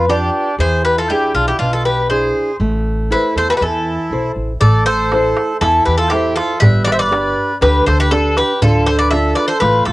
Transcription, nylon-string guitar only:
0, 0, Header, 1, 2, 480
1, 0, Start_track
1, 0, Key_signature, 0, "minor"
1, 0, Tempo, 501672
1, 563, Time_signature, 4, 2, 24, 8
1, 9496, End_track
2, 0, Start_track
2, 0, Title_t, "Nylon-string guitar"
2, 0, Program_c, 0, 24
2, 89, Note_on_c, 0, 65, 47
2, 93, Note_on_c, 0, 71, 43
2, 96, Note_on_c, 0, 74, 52
2, 471, Note_off_c, 0, 65, 0
2, 473, Note_off_c, 0, 71, 0
2, 475, Note_off_c, 0, 74, 0
2, 575, Note_on_c, 0, 52, 70
2, 1037, Note_off_c, 0, 52, 0
2, 1051, Note_on_c, 0, 62, 54
2, 1056, Note_on_c, 0, 64, 50
2, 1061, Note_on_c, 0, 68, 55
2, 1434, Note_off_c, 0, 62, 0
2, 1436, Note_off_c, 0, 64, 0
2, 1440, Note_off_c, 0, 68, 0
2, 1528, Note_on_c, 0, 47, 59
2, 1995, Note_off_c, 0, 47, 0
2, 2008, Note_on_c, 0, 62, 51
2, 2014, Note_on_c, 0, 64, 44
2, 2016, Note_on_c, 0, 68, 52
2, 2394, Note_off_c, 0, 62, 0
2, 2395, Note_off_c, 0, 64, 0
2, 2398, Note_off_c, 0, 68, 0
2, 2496, Note_on_c, 0, 57, 61
2, 2960, Note_off_c, 0, 57, 0
2, 2971, Note_on_c, 0, 64, 51
2, 2978, Note_on_c, 0, 69, 44
2, 2986, Note_on_c, 0, 72, 55
2, 3356, Note_off_c, 0, 64, 0
2, 3360, Note_off_c, 0, 69, 0
2, 3365, Note_off_c, 0, 72, 0
2, 3465, Note_on_c, 0, 52, 68
2, 3925, Note_off_c, 0, 52, 0
2, 3943, Note_on_c, 0, 64, 49
2, 3949, Note_on_c, 0, 69, 42
2, 3950, Note_on_c, 0, 72, 50
2, 4324, Note_off_c, 0, 64, 0
2, 4325, Note_off_c, 0, 69, 0
2, 4327, Note_off_c, 0, 72, 0
2, 4420, Note_on_c, 0, 57, 67
2, 4882, Note_off_c, 0, 57, 0
2, 4904, Note_on_c, 0, 64, 54
2, 4911, Note_on_c, 0, 69, 46
2, 4912, Note_on_c, 0, 72, 61
2, 5284, Note_off_c, 0, 64, 0
2, 5286, Note_off_c, 0, 69, 0
2, 5288, Note_off_c, 0, 72, 0
2, 5378, Note_on_c, 0, 52, 66
2, 5841, Note_off_c, 0, 52, 0
2, 5860, Note_on_c, 0, 64, 45
2, 5866, Note_on_c, 0, 69, 42
2, 5866, Note_on_c, 0, 72, 51
2, 6241, Note_off_c, 0, 64, 0
2, 6242, Note_off_c, 0, 72, 0
2, 6243, Note_off_c, 0, 69, 0
2, 6330, Note_on_c, 0, 55, 72
2, 6795, Note_off_c, 0, 55, 0
2, 6803, Note_on_c, 0, 62, 52
2, 6806, Note_on_c, 0, 67, 49
2, 6811, Note_on_c, 0, 71, 59
2, 7189, Note_off_c, 0, 62, 0
2, 7190, Note_off_c, 0, 67, 0
2, 7194, Note_off_c, 0, 71, 0
2, 7282, Note_on_c, 0, 50, 68
2, 7750, Note_off_c, 0, 50, 0
2, 7761, Note_on_c, 0, 62, 53
2, 7765, Note_on_c, 0, 67, 43
2, 7768, Note_on_c, 0, 71, 55
2, 8146, Note_off_c, 0, 62, 0
2, 8147, Note_off_c, 0, 67, 0
2, 8150, Note_off_c, 0, 71, 0
2, 8244, Note_on_c, 0, 50, 78
2, 8709, Note_off_c, 0, 50, 0
2, 8728, Note_on_c, 0, 62, 57
2, 8734, Note_on_c, 0, 69, 62
2, 8735, Note_on_c, 0, 65, 50
2, 9109, Note_off_c, 0, 62, 0
2, 9112, Note_off_c, 0, 69, 0
2, 9113, Note_off_c, 0, 65, 0
2, 9202, Note_on_c, 0, 57, 67
2, 9496, Note_off_c, 0, 57, 0
2, 9496, End_track
0, 0, End_of_file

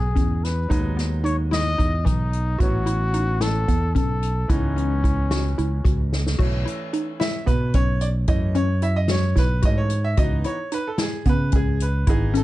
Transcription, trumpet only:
0, 0, Header, 1, 2, 480
1, 0, Start_track
1, 0, Tempo, 541516
1, 632, Time_signature, 7, 3, 24, 8
1, 11024, End_track
2, 0, Start_track
2, 0, Title_t, "Trumpet"
2, 0, Program_c, 0, 56
2, 0, Note_on_c, 0, 68, 71
2, 391, Note_on_c, 0, 71, 66
2, 405, Note_off_c, 0, 68, 0
2, 871, Note_off_c, 0, 71, 0
2, 1103, Note_on_c, 0, 73, 79
2, 1212, Note_off_c, 0, 73, 0
2, 1354, Note_on_c, 0, 75, 106
2, 1825, Note_on_c, 0, 63, 81
2, 1838, Note_off_c, 0, 75, 0
2, 2304, Note_on_c, 0, 66, 86
2, 2318, Note_off_c, 0, 63, 0
2, 3028, Note_on_c, 0, 69, 97
2, 3041, Note_off_c, 0, 66, 0
2, 3504, Note_off_c, 0, 69, 0
2, 3510, Note_on_c, 0, 69, 78
2, 3956, Note_off_c, 0, 69, 0
2, 4000, Note_on_c, 0, 61, 78
2, 5399, Note_off_c, 0, 61, 0
2, 11024, End_track
0, 0, End_of_file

